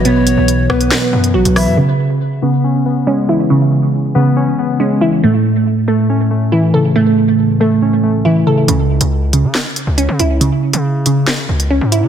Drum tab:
HH |x-x-x--xx--x-xo-|----------------|----------------|----------------|
SD |------r-o-----r-|----------------|----------------|----------------|

HH |----------------|x--x--x---x-x-x-|x--x--x-x--x--x-|
SD |----------------|--------o-------|--------o-------|